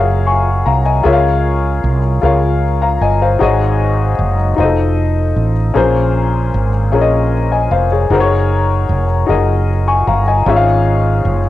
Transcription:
Already playing: fretless electric bass F#1, upright piano F#4 G#4 A#4 C#5 D#5 E5 F5
0.27 upright piano G#5 C#6
0.66 fretless electric bass C2, upright piano F5 A#5
0.86 upright piano D#5 G#5
1.03 fretless electric bass C#2, upright piano C#4 F4 G#4 A#4 C#5 E5
1.13 upright piano F5
1.84 fretless electric bass C2
2.21 fretless electric bass C#2, upright piano F4 G#4 A#4 C#5 F5
2.82 upright piano F5 A#5
3.01 fretless electric bass G1, upright piano D#5 G#5
3.22 upright piano C5 F5
3.39 fretless electric bass G#1, upright piano G#2 D#4 F#4 G#4 C#5 D#5
4.19 fretless electric bass F#1
4.56 fretless electric bass F1, upright piano D#4 F4 F#4 C5 D#5
4.65 upright piano A4
5.36 fretless electric bass A1
5.74 fretless electric bass A#1, upright piano A#2 C#4 F4 G#4 A#4 C5
6.54 fretless electric bass G#1
6.92 fretless electric bass A#1, upright piano C#4 F4 G#4 A#4 C#5
7.01 upright piano D#5
7.52 upright piano D#5 G#5
7.71 fretless electric bass F1, upright piano C5 F5
7.92 upright piano G#4 C#5
8.10 fretless electric bass F#1, upright piano D#4 F#4 G#4 A#4 C5
8.20 upright piano C#5
8.89 fretless electric bass F1
9.27 fretless electric bass F#1, upright piano D#4 F#4 G#4 A#4 D#5
9.88 upright piano G#5 C#6
10.07 fretless electric bass G1, upright piano F5 A#5
10.28 upright piano D#5 G#5
10.46 fretless electric bass G#1, upright piano G#2 C#4 F4 G#4 C#5 E5
10.56 upright piano F5
11.25 fretless electric bass F#1

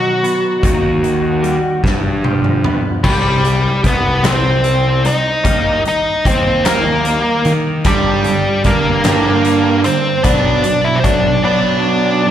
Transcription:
Already playing: clean electric guitar B2 D#3 F#3 D#4, lead electric guitar F#4
0.23 clean electric guitar B3, closed hi-hat
0.63 picked electric bass D#2, clean electric guitar D#3, kick, closed hi-hat
1.03 clean electric guitar D#3, closed hi-hat
1.43 clean electric guitar G3, closed hi-hat
1.84 picked electric bass G2, clean electric guitar G2, kick, snare
2.24 clean electric guitar F3, high tom
2.44 mid tom
2.64 clean electric guitar B3, mid tom
3.03 picked electric bass C2, clean electric guitar C3 G3 C4, lead electric guitar G3 G4, kick, crash
3.44 clean electric guitar C3 G3, closed hi-hat
3.83 picked electric bass C2, clean electric guitar C3 G3, lead electric guitar B3 B4, kick, closed hi-hat
4.23 clean electric guitar C3 G3 C4, lead electric guitar C4, snare, closed hi-hat
4.27 lead electric guitar C5
4.64 closed hi-hat
5.05 clean electric guitar C3 G3, lead electric guitar D#4 D#5, closed hi-hat
5.44 picked electric bass D#2, clean electric guitar D#3 G3 A#3, kick, closed hi-hat
5.85 clean electric guitar D#3 G3, lead electric guitar D#4 D#5, closed hi-hat
6.25 picked electric bass D#2, clean electric guitar D#3 G3, lead electric guitar C4 C5, kick, closed hi-hat
6.65 clean electric guitar D#3 G3 A#3, lead electric guitar A#3 A#4, snare, closed hi-hat
7.05 closed hi-hat
7.45 clean electric guitar D#3 G3, picked electric bass D#3, closed hi-hat
7.84 picked electric bass G2, clean electric guitar G2 D3 G3, lead electric guitar G3 G4, kick, closed hi-hat
8.24 clean electric guitar G2 D3, closed hi-hat
8.64 picked electric bass G2, clean electric guitar G2 D3, lead electric guitar A#3 A#4, kick, closed hi-hat
9.04 clean electric guitar G2 D3 G3, snare, closed hi-hat
9.45 closed hi-hat
9.84 clean electric guitar G2 D3, lead electric guitar C4 C5, closed hi-hat
10.23 picked electric bass B1, clean electric guitar B2 F#3 B3, lead electric guitar D4 D5, kick, closed hi-hat
10.64 clean electric guitar B2 F#3, closed hi-hat
10.84 lead electric guitar E4 E5
10.95 lead electric guitar C5
11.04 picked electric bass B1, clean electric guitar B2 F#3, lead electric guitar D4 D5, kick, closed hi-hat
11.44 clean electric guitar B2 F#3 B3, lead electric guitar D4 D5
12.25 clean electric guitar B2 F#3

